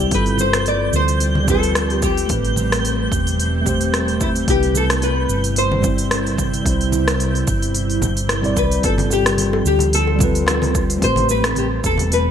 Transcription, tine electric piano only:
Already playing: G3 C4 E4 D5
0.07 G3 C4
0.12 F4 A4
1.44 G3 C4
1.49 F4 B4
2.26 A3 C4
2.31 G4 B4
3.61 A3 C4
3.66 G4 C5
4.44 G3 C4
4.49 E4 B4
5.80 G3 C4
5.85 E4 C5
6.62 G3 C4
6.67 E4 C5
8.42 G3 C4 E4 D5
8.80 G3 C4
8.85 F4 A4
10.16 G3 C4
10.21 F4 B4
10.97 A3 C4
11.02 G4 B4

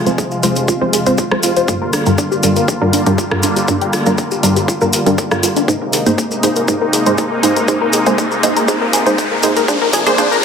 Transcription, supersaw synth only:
Already playing: C3 F3 G#3 F4
1.68 D3 G3 A#3
5.68 C3 G#3
9.68 D4

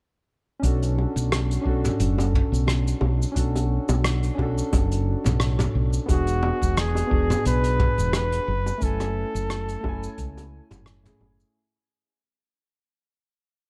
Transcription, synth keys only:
0.60 C#4 D4
0.65 F#4 A4
1.61 C#4 D4
1.67 F#4 A4
3.32 C#4 D4
3.37 F#4 A4
4.35 C#4 D4
4.39 F#4 A4
6.06 B3 D4
6.11 F#4 G#4
7.07 B3 D4
7.13 F#4 G#4
8.78 A3 C#4
8.83 E4 G#5
9.80 A3 C#4
9.86 E4 G#5
11.03 A3 C#4 E4 G#4

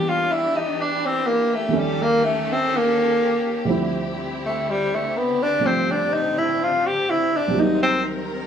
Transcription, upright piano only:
Already playing: E2 E3 G3 A#3 D4
1.68 D#2 D#3 G3 A4
1.73 C#4
3.65 D2 D3 F3 G3
3.69 C4 E4
5.59 C3 G3 A3 D4 F4
7.48 C2 C3
7.54 F#3 A#3
7.59 D#4

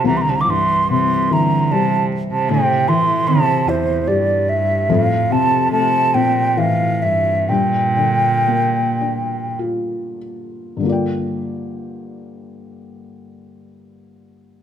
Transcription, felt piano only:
0.04 C2
0.48 G2
0.90 C3
1.31 E3
1.71 G3
2.49 A2
2.89 E3
3.28 C4
3.67 E4
4.07 G4
4.89 F2
5.30 C3
5.72 A3
6.15 C4
6.57 E3
7.49 G2
7.97 D3
8.47 A#3
9.01 D4
9.59 F4
10.77 G2 D3
10.83 A#3 F4
10.89 D5 G5

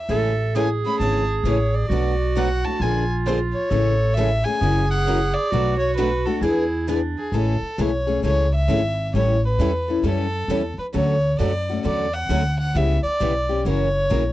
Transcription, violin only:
Already playing: E5
0.56 G#5
0.86 B5
1.00 A5
1.46 C#5
1.75 D5
2.38 F#5
2.65 A5
2.82 G#5
3.27 C5
3.53 C#5
4.14 E5
4.45 G#5
4.91 F#5
5.34 D5
5.79 C#5
5.97 B4
6.26 A4
6.42 G#4
7.18 G#4
7.34 A4
7.81 C#5
8.25 C#5
8.55 E5
9.16 C#5
9.45 B4
10.06 A4
10.79 B4
10.94 C#5
11.40 D5
11.87 D5
12.14 F#5
12.60 F#5
12.77 E5
13.03 D5
13.67 C#5

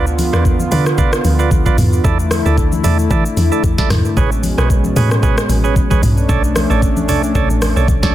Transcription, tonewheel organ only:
0.33 F4 B4 D5
0.71 F4 B4 D5
0.98 F4 B4 D5
1.39 F4 B4 D5
1.66 F4 B4 D5
2.04 E4 A4 D5
2.45 E4 A4 D5
2.84 E4 A4 D5
3.11 E4 A4 D5
3.52 E4 A4 D5
3.78 E4 A4 D5
4.17 G#4 B4 C#5
4.58 G#4 B4 C#5
4.96 G#4 B4 C#5
5.23 G#4 B4 C#5
5.64 G#4 B4 C#5
5.90 G#4 B4 C#5
6.29 A4 C#5 D5
6.70 A4 C#5 D5
7.08 A4 C#5 D5
7.35 A4 C#5 D5
7.76 A4 C#5 D5
8.03 A4 C#5 D5

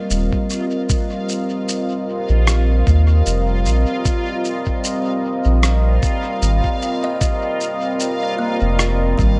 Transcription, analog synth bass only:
0.11 D#1
2.30 A#1
2.87 D#2
3.27 F1
3.66 A#1
5.46 A#1
6.42 G#1
8.62 F1
9.19 G#1

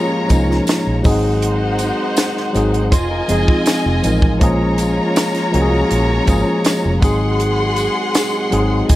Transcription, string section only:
Already playing: F4 C#5 A#5
1.05 D#4 C5 F#5
2.92 F4 D#5 G#5
4.41 F4 C#5 A#5
7.02 G#4 F#5 C6
8.90 F4 D#5 G#5

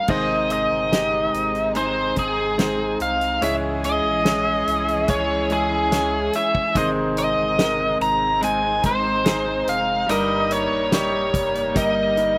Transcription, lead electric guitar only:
Already playing: F5
0.10 D#5
0.52 D#5
1.77 C5
2.19 G#4
3.02 F5
3.43 E5
3.85 D#5
5.10 C#5
5.52 G#4
6.36 E5
6.77 D#5
7.19 D#5
8.02 A#5
8.44 G#5
8.86 C5
9.69 F5
10.11 D#5
10.52 C#5
10.94 C#5
11.77 D#5

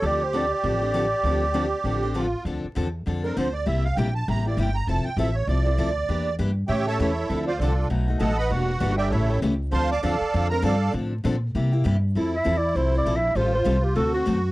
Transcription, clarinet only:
0.06 D5
0.24 C5
0.37 D5
0.54 D5
12.36 E5
12.57 D5
12.76 C5
12.98 D5
13.16 E5
13.36 C5
13.55 C5
13.84 G4
13.96 A4
14.14 F#4

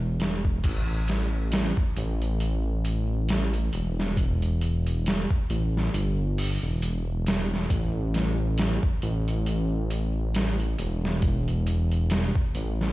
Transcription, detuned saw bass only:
Already playing: E1
0.64 A1
1.97 A1
3.73 E1
5.50 A1
5.94 G1
6.63 E1
7.70 A1
9.03 A1
10.79 E1
12.55 A1

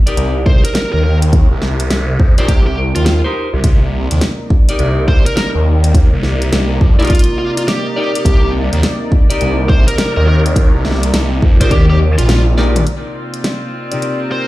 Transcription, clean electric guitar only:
0.07 D#4 G4 A#4 D5
2.38 D#4 G4 A#4 D5
3.24 D#4 G4 A#4 C5
4.69 D#4 G4 A#4 D5
6.99 D#4 G4 A#4 D5
7.96 D#4 G4 A#4 D5
9.30 D#4 G4 A#4 D5
11.61 D#4 G4 A#4 D5
12.58 D#4 G4 A#4 D5
13.92 C3 D#4 G4 A#4 D5

